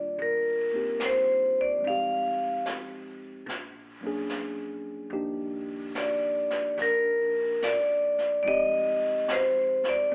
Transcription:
Already playing: upright bass A#1, tine electric piano D#3 G3 A#3 D4 F4, vibraphone D5
0.17 upright bass G1, brush sweep
0.22 vibraphone A#4
0.73 tine electric piano A#3 C4 D#4 G4
1.00 snare, hi-hat pedal
1.05 vibraphone C5
1.61 vibraphone D5
1.78 tine electric piano F3 G#3
1.83 upright bass F1, tine electric piano C4 D#4, brush sweep
1.87 tine electric piano G4, vibraphone F5
2.66 snare, hi-hat pedal
3.46 upright bass A#1, brush sweep, snare
4.01 tine electric piano F#3 A#3 C#4
4.06 tine electric piano D4 G#4
4.30 snare, hi-hat pedal
5.10 upright bass D#2, tine electric piano F3 A#3 D4 D#4 G4, brush sweep
5.95 vibraphone D5, snare, hi-hat pedal
6.51 muted upright bass stroke, snare
6.77 upright bass A#1, brush sweep, snare
6.82 vibraphone A#4
7.62 vibraphone D5, snare, hi-hat pedal
8.18 snare
8.43 upright bass F1, tine electric piano F3 G#3 C4 D#4, vibraphone D5, brush sweep
8.48 tine electric piano G4, vibraphone D#5
9.28 snare, hi-hat pedal
9.33 vibraphone C5
9.84 snare
9.89 vibraphone D5
10.12 upright bass A#1

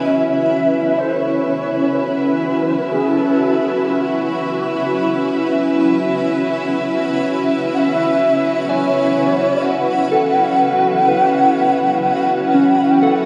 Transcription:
Already playing: ambient pad C#4 E4 B4, synth bell B4
0.02 violin section E4 E5, shakuhachi E5
0.79 ambient pad F#4
0.98 synth bell A4, shakuhachi C5
1.16 shakuhachi C#5
1.95 shakuhachi B4
2.91 synth bell C#4, shakuhachi G#4
3.09 shakuhachi A4
3.87 shakuhachi F#4
7.73 shakuhachi F#5
7.78 shakuhachi E5
8.69 shakuhachi C#5, synth bell G#5
9.62 shakuhachi F#5
10.12 synth bell A4
11.08 synth bell B4
12.54 synth bell C#4
13.03 synth bell A4 F#5

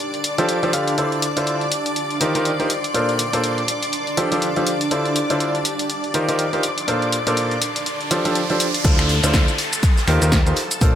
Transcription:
Already playing: ambient pad D4 A5 C6, string machine D5 D6
0.14 ambient pad G4, closed hi-hat
0.24 closed hi-hat
0.38 grand piano F3 D4 F4 G4 A4 C5, closed hi-hat
0.49 closed hi-hat
0.63 grand piano F3 D4 F4 G4 A4 C5, closed hi-hat
0.73 grand piano D3 D4 F4 G4 A4 F5, closed hi-hat
0.88 closed hi-hat
0.98 grand piano D3 D4 E4 F4 A4 C5, closed hi-hat
1.04 ambient pad F4
1.12 closed hi-hat
1.22 closed hi-hat
1.37 grand piano D3 D4 E4 F4 A4 C5, closed hi-hat
1.43 ambient pad C6
1.47 closed hi-hat
1.61 closed hi-hat
1.72 closed hi-hat
1.86 closed hi-hat
1.96 closed hi-hat
2.10 closed hi-hat
2.21 grand piano D#3 D#4 F4 G4 A#4 C5, closed hi-hat
2.35 grand piano D#3 D#4 F4 G4 A#4 C5, closed hi-hat
2.45 closed hi-hat
2.60 grand piano D#4 F4 G4 A#4 C5, closed hi-hat
2.70 ambient pad D4, closed hi-hat
2.84 closed hi-hat
2.93 grand piano A#2 D4 F4 A4 A#4 C5, ambient pad A5, closed hi-hat
3.09 closed hi-hat
3.19 closed hi-hat
3.33 grand piano A#2 D4 F4 A4 A#4 C5, closed hi-hat
3.44 closed hi-hat
3.58 closed hi-hat
3.68 closed hi-hat
3.83 closed hi-hat
3.93 closed hi-hat
3.98 ambient pad G4
4.07 closed hi-hat
4.17 grand piano F3 D4 F4 G4 A4 C5, closed hi-hat
4.32 grand piano F3 D4 F4 G4 A4 C5, closed hi-hat
4.42 closed hi-hat
4.56 grand piano F3 D4 F4 G4 A4 C5, closed hi-hat
4.67 closed hi-hat
4.81 closed hi-hat
4.91 grand piano D3 D4 E4 F4 A4 C5, closed hi-hat, riser
5.05 closed hi-hat
5.16 closed hi-hat
5.30 grand piano D3 D4 E4 F4 A4 C5, closed hi-hat
5.36 ambient pad C6, closed hi-hat
5.55 closed hi-hat
5.65 closed hi-hat
5.79 closed hi-hat
5.90 closed hi-hat
6.04 closed hi-hat
6.14 grand piano D#3 D#4 F4 G4 A#4 C5, closed hi-hat
6.28 grand piano D#3 D#4 F4 G4 A#4 C5, closed hi-hat
6.39 closed hi-hat
6.53 grand piano D#4 F4 G4 A#4 C5, closed hi-hat
6.63 ambient pad D4, closed hi-hat
6.78 closed hi-hat
6.88 grand piano A#2 D4 F4 A4 A#4 C5, ambient pad A5, closed hi-hat
7.02 closed hi-hat
7.12 closed hi-hat
7.27 grand piano A#2 D4 F4 A4 A#4 C5, closed hi-hat
7.37 closed hi-hat
7.51 closed hi-hat
7.62 closed hi-hat
7.76 closed hi-hat
7.86 closed hi-hat
8.01 closed hi-hat
8.11 grand piano F3 D4 F4 G4 A4 C5, closed hi-hat
8.25 grand piano F3 D4 F4 G4 A4 C5, closed hi-hat
8.35 closed hi-hat
8.50 grand piano F3 D4 F4 G4 A4 C5, closed hi-hat
8.60 closed hi-hat
8.74 closed hi-hat
8.84 analog synth bass D2, grand piano D3 D4 E4 F4 A4 C5, string machine A4 A5, kick, closed hi-hat, crash, downlifter, shaker
8.99 finger snap, snare, shaker
9.09 closed hi-hat, open hi-hat
9.24 analog synth bass D2, grand piano D3 D4 E4 F4 A4 C5, closed hi-hat, shaker
9.34 kick, snare, closed hi-hat, shaker
9.48 closed hi-hat, shaker
9.58 closed hi-hat, open hi-hat
9.73 closed hi-hat, shaker
9.83 kick, closed hi-hat, open hi-hat, shaker
9.97 snare, shaker
10.08 analog synth bass D#2, grand piano D#3 D#4 F4 G4 A#4 C5, finger snap, closed hi-hat, open hi-hat
10.22 analog synth bass D#2, grand piano D#3 D#4 F4 G4 A#4 C5, closed hi-hat, shaker
10.32 kick, snare, closed hi-hat, shaker
10.46 analog synth bass D#2, grand piano D#4 F4 G4 A#4 C5, closed hi-hat, shaker
10.56 snare, closed hi-hat, open hi-hat
10.71 closed hi-hat, shaker
10.81 analog synth bass A#1, grand piano A#2 D4 F4 A4 A#4 C5, kick, closed hi-hat, shaker

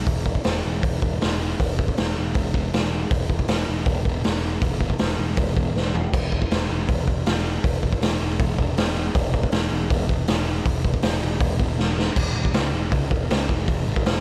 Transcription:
0.07 picked electric bass E1, kick, open hi-hat
0.26 kick
0.35 kick
0.44 picked electric bass E1, snare, open hi-hat
0.66 picked electric bass E1
0.83 picked electric bass E1, kick, open hi-hat
1.02 picked electric bass E1, kick
1.21 picked electric bass E1, snare, open hi-hat
1.60 picked electric bass E1, kick, open hi-hat
1.79 kick
1.88 kick
1.97 picked electric bass E1, snare, open hi-hat
2.18 picked electric bass E1
2.34 picked electric bass E1, kick, open hi-hat
2.54 picked electric bass E1, kick
2.73 picked electric bass E1, snare, open hi-hat
3.11 picked electric bass E1, kick, open hi-hat
3.30 kick
3.39 kick
3.48 picked electric bass E1, snare, open hi-hat
3.69 picked electric bass E1
3.86 picked electric bass E1, kick, open hi-hat
4.05 picked electric bass E1, kick
4.24 picked electric bass E1, snare, open hi-hat
4.61 picked electric bass E1, kick, open hi-hat
4.81 kick
4.90 kick
4.99 picked electric bass E1, snare, open hi-hat
5.19 picked electric bass E1
5.37 picked electric bass E1, kick, open hi-hat
5.56 picked electric bass E1, kick
5.76 picked electric bass E1, snare
5.95 floor tom
6.13 picked electric bass E1, kick, crash
6.32 kick
6.42 kick
6.51 picked electric bass E1, snare, open hi-hat
6.70 picked electric bass E1
6.89 picked electric bass E1, kick, open hi-hat
7.07 picked electric bass E1, kick
7.26 picked electric bass E1, snare, open hi-hat
7.64 picked electric bass E1, kick, open hi-hat
7.83 kick
7.93 kick
8.01 picked electric bass E1, snare, open hi-hat
8.21 picked electric bass E1
8.40 picked electric bass E1, kick, open hi-hat
8.58 picked electric bass E1, kick
8.77 picked electric bass E1, snare, open hi-hat
9.15 picked electric bass E1, kick, open hi-hat
9.34 kick
9.43 kick
9.52 picked electric bass E1, snare, open hi-hat
9.71 picked electric bass E1
9.90 picked electric bass E1, kick, open hi-hat
10.09 picked electric bass E1, kick
10.27 picked electric bass E1, snare, open hi-hat
10.65 picked electric bass E1, kick, open hi-hat
10.85 kick
10.94 kick
11.02 picked electric bass E1, snare, open hi-hat
11.23 picked electric bass E1
11.40 picked electric bass E1, kick, open hi-hat
11.60 picked electric bass E1, kick
11.79 picked electric bass E1, snare
11.99 snare
12.16 picked electric bass E1, kick, crash
12.35 picked electric bass E1
12.45 kick
12.54 picked electric bass C#2, snare, open hi-hat
12.73 picked electric bass E1
12.92 picked electric bass C#2, kick, open hi-hat
13.11 picked electric bass E1, kick
13.30 picked electric bass C#2, snare, open hi-hat
13.49 picked electric bass E1, kick
13.68 picked electric bass E1, kick, open hi-hat
13.87 picked electric bass G#1
13.96 kick
14.06 picked electric bass E1, snare, open hi-hat

